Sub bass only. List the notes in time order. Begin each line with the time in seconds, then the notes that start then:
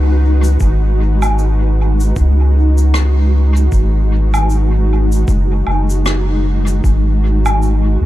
Already playing: C#2
0.60 G#1
2.16 C#2
3.72 G#1
5.28 F#1
5.67 F#1
6.84 G#1
8.01 D#2